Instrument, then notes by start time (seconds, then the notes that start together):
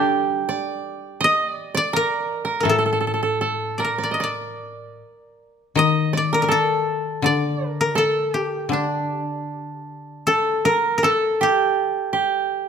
koto
Already playing: D3 G3 D4 G4 A4
0.49 D5
1.21 D#5
1.50 D5
1.75 D5
1.93 A#4
2.45 A#4
2.60 A4 A#4
2.65 A2
2.69 A4
2.78 A4
2.86 A4
2.93 A4
3.01 A4
3.07 A4
3.14 A4
3.23 A4
3.41 A4
3.78 A#4 D5
3.84 A#4
3.98 D5
4.04 D5
4.11 D#5
4.20 D5
5.75 D#3 D#5
6.13 D5
6.17 D5
6.33 A#4
6.42 A#4
6.48 A4
7.22 D3 D5
7.70 A#4
7.81 A#4
7.95 A4
8.34 G4
8.41 G4
8.69 D3 D4
8.73 D4
10.27 A4
10.65 A#4
10.98 A#4
11.03 A4
11.41 G4
12.13 G4